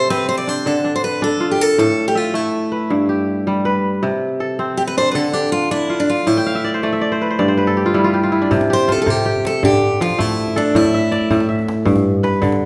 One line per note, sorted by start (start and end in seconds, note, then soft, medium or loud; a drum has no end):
0.00 0.72 C3 medium
0.00 1.23 A4 medium
0.00 0.16 B4 medium
0.10 1.90 C4 medium
0.10 0.28 B4 loud
0.29 0.37 C5 medium
0.38 0.49 D5 medium
0.47 0.84 D4 medium
0.47 0.67 C5 medium
0.66 1.84 D3 medium
0.66 0.95 A4 medium
0.84 1.22 D4 medium
0.96 1.04 C5 medium
1.04 1.23 B4 medium
1.22 2.90 D4 medium
1.22 1.51 A4 medium
1.40 2.21 F4 medium
1.51 1.61 G4 medium
1.61 1.78 A4 medium
1.78 2.96 A2 medium
1.78 2.05 A4 medium
2.08 2.17 G4 medium
2.15 2.35 F4 medium
2.15 3.19 E5 medium
2.34 4.33 A3 medium
2.34 3.47 E4 medium
2.72 3.65 B4 medium
2.90 4.08 G2 medium
3.09 4.50 G4 medium
3.47 4.08 G3 medium
3.65 4.65 B4 medium
4.03 5.20 C3 medium
4.40 5.72 A4 medium
4.59 6.39 C4 medium
4.77 4.82 G4 medium
4.87 4.97 B4 medium
4.97 5.33 D4 medium
4.97 5.11 C5 medium
5.11 6.32 D3 medium
5.11 5.33 A4 medium
5.11 5.15 B4 medium
5.33 5.71 D4 medium
5.33 5.52 G4 medium
5.52 5.71 F4 medium
5.71 7.39 D4 medium
5.71 6.00 E4 medium
5.90 6.61 F4 medium
6.00 6.09 D4 medium
6.10 6.27 F4 medium
6.27 7.44 A2 medium
6.27 6.69 E4 medium
6.37 7.30 G5 medium
6.46 6.99 F5 medium
6.55 6.92 E5 medium
6.64 6.83 D5 medium
6.74 7.11 C5 medium
6.83 8.83 A3 medium
6.83 7.01 D5 medium
6.92 7.92 E5 medium
7.01 7.38 D5 medium
7.12 7.30 C5 medium
7.21 7.54 B4 medium
7.31 7.48 C5 medium
7.39 8.56 G2 medium
7.39 8.50 D5 medium
7.48 8.67 C5 medium
7.57 8.57 B4 medium
7.67 8.99 A4 medium
7.77 8.13 G4 medium
7.86 8.04 F4 medium
7.94 8.56 G3 medium
7.94 8.29 E4 medium
8.04 8.23 F4 medium
8.14 8.70 G4 medium
8.23 8.87 F4 medium
8.32 8.94 E4 medium
8.42 10.10 D4 medium
8.51 9.05 C3 medium
8.51 djembe bass medium
8.61 djembe slap medium
8.61 djembe tone medium
8.70 9.25 G4 medium
8.70 8.92 C5 loud
8.88 10.39 F4 medium
8.88 djembe slap medium
8.92 9.00 A4 medium
8.98 9.10 A4 medium
8.98 djembe slap soft
8.98 djembe tone medium
9.06 9.68 C3 medium
9.06 djembe bass medium
9.10 9.46 G4 loud
9.17 djembe slap medium
9.25 10.67 G4 medium
9.36 djembe tone medium
9.45 9.64 A4 medium
9.45 djembe slap medium
9.55 djembe slap soft
9.63 10.80 D3 medium
9.63 10.02 G4 medium
9.63 djembe bass medium
9.73 djembe slap soft
9.73 djembe tone medium
10.01 10.80 F3 medium
10.01 10.20 F4 medium
10.01 djembe slap medium
10.10 djembe tone soft
10.19 12.18 A3 medium
10.19 10.58 E4 medium
10.19 djembe bass medium
10.29 djembe slap soft
10.47 djembe tone medium
10.56 10.76 D4 medium
10.56 11.88 A4 medium
10.56 djembe slap medium
10.75 11.29 A2 medium
10.75 11.46 E4 medium
10.75 djembe bass medium
10.85 djembe slap soft
10.85 djembe tone medium
10.94 11.48 E5 medium
11.12 12.22 D5 medium
11.12 djembe slap medium
11.21 djembe slap soft
11.21 djembe tone soft
11.31 11.92 A2 medium
11.31 djembe bass medium
11.40 djembe slap medium
11.49 12.52 E5 medium
11.59 djembe tone medium
11.68 djembe slap medium
11.78 djembe slap soft
11.85 12.65 G2 medium
11.85 djembe bass medium
11.96 djembe slap soft
11.96 djembe tone medium
12.23 12.65 B4 medium
12.23 djembe slap medium
12.34 djembe tone soft
12.42 12.65 D3 medium
12.42 djembe bass medium
12.52 djembe slap medium